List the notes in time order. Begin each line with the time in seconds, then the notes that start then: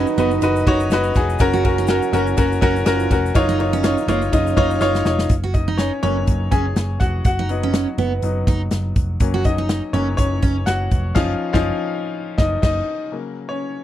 Already playing: D#3 F#3 D#4 F#4 B4
0.07 shaker
0.18 F#1 B3 D#4 F#4 B4, ride, shaker
0.31 shaker
0.42 F#1 D#4 F#4 B4, ride, shaker
0.56 shaker
0.66 F#1 D#4 F#4 C#5, kick, ride
0.80 shaker
0.90 F#1 D#4 F#4 B4, snare, ride, shaker
1.03 shaker
1.15 F1 D#4 F#4 G#4, kick, snare, ride, shaker
1.30 shaker
1.39 F#1 C#3 F#3 C#4 F#4 A#4, kick, ride, shaker
1.53 F#4, shaker
1.64 C#4 F#4 A#4, kick, ride
1.78 D#4, shaker
1.87 C#4 F#4 A#4, snare, ride, shaker
2.02 shaker
2.13 F#1 C#4 F#4 A#4, ride, shaker
2.27 shaker
2.37 F#1 C#4 F#4 A#4, kick, ride, shaker
2.52 shaker
2.61 F#1 C#4 F#4 A#4, kick, ride
2.76 shaker
2.86 F#1 F3 C#4 F4 F#4 A#4, snare, ride, shaker
3.00 shaker
3.10 F1 C#4 F#4 A#4, kick, snare, ride, shaker
3.26 shaker
3.35 F#1 D#3 F#3 D#4 F4 C#5, kick, ride, shaker
3.49 D#4, shaker
3.59 D#4 F4 C#5, ride
3.73 C#4, shaker
3.83 D#4 F4 C#5, snare, ride, shaker
3.97 shaker
4.08 F#1 A#3 D#4 F4 C#5, ride, shaker
4.22 shaker
4.32 F#1 C#3 C#4 D#4 F4 D#5, kick, ride, shaker
4.47 shaker
4.56 F#1 D#4 F4 C#5, kick, ride
4.71 shaker
4.81 F#1 D#4 F4 C#5, snare, shaker
4.95 snare, shaker
5.05 F1 D#4 F4 C#5, snare, shaker
5.19 snare, shaker
5.29 F#1, kick, closed hi-hat
5.44 F#4
5.54 D#4 D#5, kick, closed hi-hat
5.68 D#4
5.78 C#4 C#5, snare, closed hi-hat
6.03 F#1 F#3 A#3 C#4 C#5, closed hi-hat
6.27 F#1, kick, closed hi-hat
6.51 F#1 C#4 G#4 G#5, kick, closed hi-hat
6.76 F#1, snare, closed hi-hat
7.00 F1 F#4 F#5, kick, snare, closed hi-hat
7.25 F#1 F#4 F#5, kick, closed hi-hat
7.39 D#4
7.49 F#3 B3 D#4, closed hi-hat
7.63 C#4
7.73 snare, closed hi-hat
7.98 F#1 B3, closed hi-hat
8.22 F#1 F#3 B3 D#4, closed hi-hat
8.47 F#1 D#4, kick, closed hi-hat
8.71 F#1, snare, closed hi-hat
8.96 F1, kick, closed hi-hat
9.20 F#1 F#3 A#3 C#4, kick, closed hi-hat
9.34 F#4
9.44 D#4 D#5, kick, closed hi-hat
9.58 D#4
9.69 snare, closed hi-hat
9.93 F#1 F#3 A#3 C#4 C#5, closed hi-hat
10.17 F#1 C#4 C#5, kick, closed hi-hat
10.42 F#1 C#4, kick, closed hi-hat
10.66 F#1 F#4 F#5, snare, closed hi-hat
10.91 F1, kick, closed hi-hat
11.15 F#1 F3 C#4 D#4 F4 F5, kick, snare, crash
11.53 F#1 F3 C#4 D#4 F4 F5, kick, snare
12.38 F#1 D#4 D#5, kick, snare
12.62 F#1 D#4 D#5, kick, snare, crash
13.11 C#3 F#3 A#3
13.49 C#4 C#5